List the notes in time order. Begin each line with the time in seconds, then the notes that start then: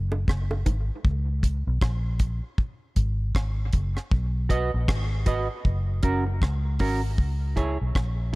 Already playing: F#1
0.12 high bongo
0.28 F#1, kick, cross-stick
0.51 high bongo
0.66 G#1, kick, closed hi-hat, low bongo
1.05 C#2, kick
1.43 kick, closed hi-hat
1.67 B1
1.82 A#1, kick, cross-stick
2.19 kick, closed hi-hat
2.58 kick
2.96 G#1, kick, closed hi-hat
3.35 G#1, kick, cross-stick
3.73 F#1, kick, closed hi-hat
3.97 cross-stick
4.11 B1, kick
4.49 F#4 B4 D#5, kick, closed hi-hat
4.74 A#1
4.88 G#1, kick, cross-stick
5.26 F#4 B4 D#5, kick, closed hi-hat
5.65 F#1, kick
6.03 F#1 C#4 F#4 A#4, kick, closed hi-hat
6.28 muted clean electric guitar stroke
6.42 C#2, kick, cross-stick
6.79 G#1 C#4 F#4 A#4, kick, open hi-hat
7.18 C#2, kick
7.56 E4 G#4 C#5, kick, closed hi-hat
7.81 B1
7.95 A#1, kick, cross-stick